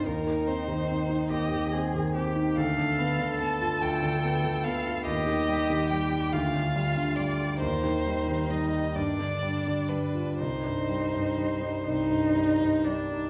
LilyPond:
<<
  \new Staff \with { instrumentName = "Violin" } { \time 6/8 \key c \minor \tempo 4. = 47 bes'8 c''4 ees''8 r4 | f''4 a''8 g''4 f''8 | ees''4 g''8 f''4 d''8 | c''4 ees''8 d''4 b'8 |
c''2~ c''8 r8 | }
  \new Staff \with { instrumentName = "Cello" } { \time 6/8 \key c \minor ees'4. g'8 aes'8 g'8 | a'2. | g'4. f'4. | ees'4. d'4. |
ees'4. ees'4 d'8 | }
  \new Staff \with { instrumentName = "Grand piano" } { \clef bass \time 6/8 \key c \minor ees,16 ees16 c'16 ees16 c'16 ees'16 ees,16 ees16 c'16 ees16 c'16 ees'16 | d,16 d16 b16 d16 b16 f'16 d,16 d16 b16 d16 b16 f'16 | ees,16 ees16 g16 ees16 g16 g'16 d,16 d16 g16 d16 g16 g'16 | ees,16 ees16 g16 ees16 g16 g'16 g,16 d16 g16 d16 g16 f'16 |
c,16 g,16 g16 g,16 g16 ees'16 c,16 g,16 g16 g,16 g16 ees'16 | }
>>